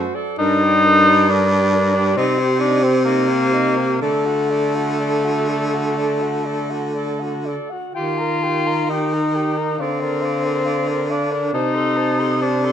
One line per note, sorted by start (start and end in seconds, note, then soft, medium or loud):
0.00 0.17 F#4 medium
0.00 0.16 C5 medium
0.15 0.37 A4 medium
0.15 0.39 D5 medium
0.38 2.18 G2 medium
0.38 0.63 D4 medium
0.38 1.30 D#4 loud
0.38 0.65 A#4 medium
0.61 0.86 G4 medium
0.61 0.87 D5 medium
0.84 1.09 D4 medium
0.84 1.09 A#4 medium
1.08 1.28 G4 medium
1.08 1.29 D5 medium
1.29 1.53 D4 medium
1.29 2.18 D4 loud
1.29 1.52 A#4 medium
1.51 1.75 G4 medium
1.51 1.75 D5 medium
1.73 1.96 D4 medium
1.73 1.97 A#4 medium
1.94 2.16 G4 medium
1.94 2.17 D5 medium
2.17 4.01 C3 medium
2.17 2.62 C4 loud
2.17 2.39 D#4 medium
2.17 2.41 D#5 medium
2.38 2.60 G4 medium
2.38 2.63 C5 medium
2.59 2.85 D4 loud
2.59 2.83 D#4 medium
2.59 2.85 D#5 medium
2.81 3.04 C4 medium
2.81 3.04 G4 medium
2.81 3.06 C5 medium
3.05 4.00 A#3 loud
3.05 3.29 D#4 medium
3.05 3.30 D#5 medium
3.28 3.54 G4 medium
3.28 3.55 C5 medium
3.52 3.79 D#4 medium
3.52 3.78 D#5 medium
3.77 4.00 G4 medium
3.77 4.01 C5 medium
4.00 7.56 D3 medium
4.00 7.41 A3 medium
4.00 4.27 A4 medium
4.00 4.28 D5 medium
4.26 4.51 F#4 medium
4.26 4.52 F#5 medium
4.50 4.77 A4 medium
4.50 4.77 D5 medium
4.75 5.00 F#4 soft
4.75 4.99 F#5 soft
5.00 5.26 A4 medium
5.00 5.26 D5 medium
5.24 5.50 F#4 medium
5.24 5.50 F#5 soft
5.48 5.75 A4 soft
5.48 5.75 D5 soft
5.73 5.96 F#4 soft
5.73 5.97 F#5 soft
5.97 6.22 A4 soft
5.97 6.24 D5 soft
6.20 6.48 F#4 soft
6.20 6.47 F#5 soft
6.45 6.73 A4 medium
6.45 6.72 D5 soft
6.70 6.95 F#4 soft
6.70 6.93 F#5 soft
6.94 7.24 A4 medium
6.94 7.21 D5 soft
7.20 7.50 F#4 soft
7.20 7.47 F#5 soft
7.46 7.74 A4 medium
7.46 7.71 D5 soft
7.70 7.95 F#4 soft
7.70 7.94 F#5 soft
7.94 9.75 D#3 medium
7.94 8.91 F4 loud
7.94 8.22 G4 medium
7.94 8.20 G5 medium
8.18 8.45 A#4 medium
8.18 8.45 A#5 soft
8.43 8.69 G4 soft
8.43 8.68 G5 medium
8.67 8.89 A#4 soft
8.67 8.90 A#5 soft
8.90 9.82 D#4 medium
8.90 9.15 G4 medium
8.90 9.15 G5 medium
9.14 9.38 A#4 medium
9.14 9.36 A#5 soft
9.35 9.59 G4 medium
9.35 9.59 G5 medium
9.58 9.80 A#4 medium
9.58 9.78 A#5 soft
9.78 11.50 D3 medium
9.78 11.12 C4 medium
9.78 10.04 D5 soft
9.78 10.02 F5 medium
10.00 10.26 A#4 medium
10.00 10.23 D5 soft
10.22 10.47 D5 medium
10.22 10.46 F5 soft
10.45 10.65 A#4 soft
10.45 10.65 D5 soft
10.65 10.90 D5 medium
10.65 10.89 F5 medium
10.88 11.11 A#4 medium
10.88 11.12 D5 medium
11.09 11.53 D4 medium
11.09 11.33 D5 medium
11.09 11.33 F5 medium
11.32 11.53 A#4 medium
11.32 11.53 D5 soft
11.53 12.72 C3 medium
11.53 12.43 D#4 loud
11.53 11.77 C5 medium
11.53 11.76 A5 medium
11.75 11.99 A4 medium
11.75 11.98 C6 medium
11.97 12.21 C5 medium
11.97 12.21 A5 medium
12.20 12.41 A4 medium
12.20 12.41 C6 medium
12.41 12.72 D4 medium
12.41 12.66 C5 medium
12.41 12.67 A5 medium
12.64 12.72 A4 medium
12.64 12.72 C6 medium